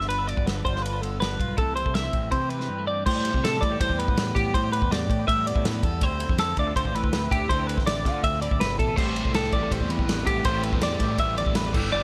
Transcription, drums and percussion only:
0.01 snare
0.10 ride
0.29 ride
0.37 kick
0.47 snare, ride
0.65 kick, ride
0.76 snare
0.86 ride
1.03 ride
1.22 snare, ride
1.40 kick, ride
1.58 kick, ride
1.77 ride
1.86 kick
1.95 snare, ride
2.13 kick, ride
2.32 kick, ride
2.50 ride
2.60 snare
3.06 kick, crash
3.25 ride
3.34 kick
3.45 snare, ride
3.62 kick, ride
3.81 kick, ride
3.90 kick
4.00 ride
4.08 kick
4.17 snare, ride
4.36 kick, ride
4.54 kick, ride
4.73 ride
4.82 kick
4.92 snare, ride
5.10 kick, ride
5.28 kick, ride
5.47 ride
5.56 kick
5.65 snare, ride
5.83 kick, ride
6.01 kick, ride
6.20 ride
6.29 kick
6.38 snare, ride
6.57 kick, ride
6.76 kick, ride
6.85 kick
6.95 ride
7.04 kick
7.13 snare, ride
7.31 kick, ride
7.50 kick, ride
7.69 ride
7.78 kick, snare
7.87 snare, ride
8.05 kick, snare, ride
8.24 kick, ride
8.42 ride
8.51 kick
8.61 snare, ride
8.79 kick, ride
8.98 kick, crash
9.16 ride
9.25 kick
9.34 snare, ride
9.44 snare
9.52 kick, ride
9.71 kick, ride
9.80 kick
9.90 ride
9.99 kick
10.09 snare, ride
10.27 kick, ride
10.45 kick, ride
10.63 ride
10.73 kick
10.81 snare, ride
11.00 kick, ride
11.18 kick, ride
11.38 ride
11.46 kick
11.55 snare, ride
11.74 kick, crash

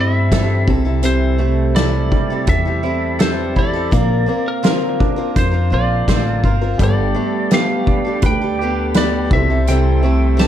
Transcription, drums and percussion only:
0.32 kick, snare, closed hi-hat
0.68 kick
1.03 closed hi-hat
1.76 snare, closed hi-hat
2.12 kick
2.47 kick, closed hi-hat
3.20 snare, closed hi-hat
3.56 kick
3.92 kick, closed hi-hat
4.64 snare, closed hi-hat
5.00 kick
5.36 kick, closed hi-hat
6.08 kick, snare, closed hi-hat
6.44 kick
6.79 kick, closed hi-hat
7.51 snare, closed hi-hat
7.87 kick
8.22 kick, closed hi-hat
8.94 snare, closed hi-hat
9.31 kick
9.67 closed hi-hat
10.39 snare, closed hi-hat

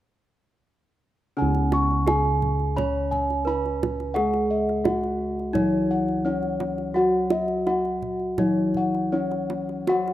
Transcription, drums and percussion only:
1.55 kendang slap
1.72 kendang high
1.91 kendang slap
2.07 kendang high
2.25 kendang slap
2.42 kendang low
2.60 kendang slap
2.78 kendang high, kendang low
3.12 kendang low
3.30 kendang slap
3.66 kendang slap
3.83 kendang high, kendang low
4.00 kendang slap
4.16 kendang high
4.34 kendang slap
4.69 kendang slap
4.85 kendang high, kendang low
5.04 kendang slap
5.39 kendang slap
5.55 kendang low
6.08 kendang slap
6.43 kendang slap
6.60 kendang high, kendang low
6.78 kendang slap
7.30 kendang high
7.48 kendang slap
7.67 kendang high
7.85 kendang slap
8.02 kendang low
8.20 kendang slap
8.38 kendang high, kendang low
8.74 kendang low
8.95 kendang slap
9.31 kendang slap
9.50 kendang high
9.69 kendang slap
9.87 kendang high
10.08 kendang slap

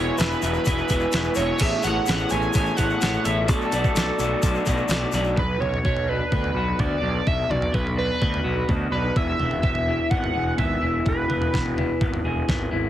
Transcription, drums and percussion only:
0.18 snare, open hi-hat, shaker
0.31 shaker
0.42 open hi-hat, shaker
0.54 shaker
0.65 kick, open hi-hat, shaker
0.78 shaker
0.89 kick, open hi-hat, shaker
1.00 shaker
1.12 snare, open hi-hat, shaker
1.24 shaker
1.35 snare, open hi-hat, shaker
1.59 kick, crash, shaker
1.83 open hi-hat, shaker
2.06 snare, open hi-hat, shaker
2.18 shaker
2.29 open hi-hat, shaker
2.42 shaker
2.53 kick, open hi-hat, shaker
2.66 shaker
2.77 kick, open hi-hat, shaker
2.90 shaker
3.01 snare, open hi-hat, shaker
3.13 shaker
3.25 open hi-hat, shaker
3.48 kick, open hi-hat, shaker
3.61 shaker
3.72 open hi-hat, shaker
3.84 kick, shaker
3.96 snare, open hi-hat, shaker
4.19 open hi-hat, shaker
4.43 kick, open hi-hat, shaker
4.55 shaker
4.66 kick, open hi-hat, shaker
4.77 shaker
4.89 snare, open hi-hat, shaker
5.12 snare, open hi-hat, shaker
5.24 shaker
5.37 kick, floor tom
5.62 mid tom
5.74 floor tom
5.85 kick
5.97 floor tom
6.32 kick
6.44 floor tom
6.79 kick, floor tom
7.27 kick, floor tom
7.51 mid tom
7.62 floor tom
7.74 kick
7.87 floor tom
8.22 kick
8.34 floor tom
8.69 kick, floor tom
9.16 kick, floor tom
9.40 mid tom
9.51 floor tom
9.63 kick
9.75 floor tom
10.11 kick
10.24 floor tom
10.58 kick, floor tom
11.06 kick, floor tom
11.30 mid tom
11.42 floor tom
11.54 kick, snare, mid tom
11.66 floor tom
11.78 mid tom
12.01 kick
12.14 floor tom
12.49 kick, snare, floor tom

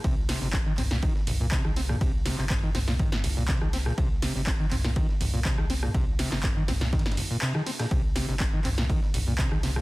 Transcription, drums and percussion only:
0.04 kick, ride
0.29 snare, open hi-hat
0.42 snare
0.53 kick, snare, clap, ride
0.78 clap, mid tom, open hi-hat, ride
0.91 snare, ride
1.03 kick, ride
1.16 snare
1.27 mid tom, open hi-hat, ride
1.51 kick, snare, clap, ride
1.65 cross-stick
1.76 snare, open hi-hat, ride
1.89 cross-stick, mid tom
2.01 kick, ride
2.26 snare, open hi-hat, ride
2.38 clap
2.50 kick, snare, clap, mid tom, ride
2.75 snare, mid tom, open hi-hat, ride
2.88 snare, ride
2.99 kick, mid tom, ride
3.12 snare, mid tom
3.24 open hi-hat, ride
3.48 kick, snare, clap, ride
3.61 cross-stick
3.73 snare, open hi-hat, ride
3.86 cross-stick
3.98 kick, ride
4.22 snare, open hi-hat
4.35 snare
4.47 kick, snare, clap, ride
4.71 clap, mid tom, open hi-hat, ride
4.84 snare, ride
4.96 kick, ride
5.09 snare
5.21 mid tom, open hi-hat, ride
5.45 kick, snare, clap, ride
5.58 cross-stick
5.70 snare, open hi-hat, ride
5.83 cross-stick, mid tom
5.94 kick, ride
6.19 snare, open hi-hat, ride
6.32 snare, clap
6.43 kick, snare, clap, mid tom, ride
6.68 snare, mid tom, open hi-hat, ride
6.81 snare, ride
6.93 kick, snare, mid tom, ride
6.99 snare, ride
7.06 snare, mid tom, ride
7.12 snare, ride
7.17 open hi-hat, ride
7.42 snare, clap, ride
7.55 cross-stick
7.67 snare, open hi-hat, ride
7.79 cross-stick, snare, ride
7.91 kick, ride
8.16 snare, open hi-hat
8.29 snare
8.40 kick, snare, clap, ride
8.65 clap, mid tom, open hi-hat, ride
8.78 snare, ride
8.90 kick, ride
9.03 snare
9.14 mid tom, open hi-hat, ride
9.38 kick, snare, clap, ride
9.52 cross-stick
9.63 snare, open hi-hat, ride
9.76 cross-stick, mid tom

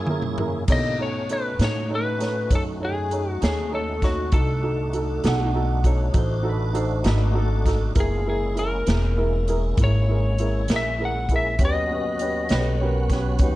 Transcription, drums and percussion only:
0.07 high tom
0.22 mid tom
0.38 mid tom
0.68 kick, closed hi-hat, crash
1.29 closed hi-hat
1.59 snare, closed hi-hat
2.20 snare, closed hi-hat
2.51 kick, closed hi-hat
3.11 closed hi-hat
3.42 snare, closed hi-hat
4.02 kick, snare, closed hi-hat
4.32 kick, closed hi-hat
4.93 closed hi-hat
5.24 snare, closed hi-hat
5.84 kick, closed hi-hat
6.14 kick, closed hi-hat
6.75 closed hi-hat
7.04 snare, closed hi-hat
7.66 kick, snare, closed hi-hat
7.95 kick, closed hi-hat
8.57 closed hi-hat
8.87 snare, closed hi-hat
9.48 closed hi-hat
9.77 kick, closed hi-hat
10.38 closed hi-hat
10.68 snare, closed hi-hat
11.29 kick, closed hi-hat
11.59 kick, closed hi-hat
12.19 closed hi-hat
12.49 snare, closed hi-hat
13.10 kick, snare, closed hi-hat
13.39 kick, closed hi-hat

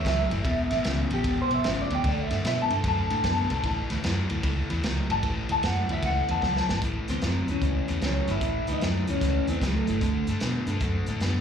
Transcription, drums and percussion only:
0.05 kick, snare, ride
0.31 ride
0.45 kick, ride
0.71 snare, ride
0.84 snare, ride
1.10 ride
1.24 kick, ride
1.51 ride
1.64 snare, ride
1.90 ride
2.04 kick, ride
2.31 snare, ride
2.45 snare, ride
2.70 ride
2.84 kick, ride
3.10 ride
3.24 kick, snare, ride
3.50 ride
3.63 kick, ride
3.90 snare, ride
4.04 snare, ride
4.30 ride
4.43 kick, ride
4.70 ride
4.83 snare, ride
5.10 ride
5.23 kick, ride
5.49 ride
5.63 snare, ride
5.89 ride
6.03 kick, ride
6.28 ride
6.42 kick, snare
6.57 snare
6.69 snare
6.82 kick, closed hi-hat
7.08 snare, closed hi-hat
7.22 snare, closed hi-hat
7.48 closed hi-hat
7.62 kick, closed hi-hat
7.88 closed hi-hat
8.02 snare, closed hi-hat
8.28 closed hi-hat
8.41 kick, closed hi-hat
8.67 closed hi-hat
8.81 snare, closed hi-hat
9.07 closed hi-hat
9.21 kick, closed hi-hat
9.47 closed hi-hat
9.61 kick, snare, closed hi-hat
9.87 closed hi-hat
10.01 kick, closed hi-hat
10.27 closed hi-hat
10.40 snare, closed hi-hat
10.67 closed hi-hat
10.80 kick, closed hi-hat
11.06 closed hi-hat
11.20 snare, closed hi-hat

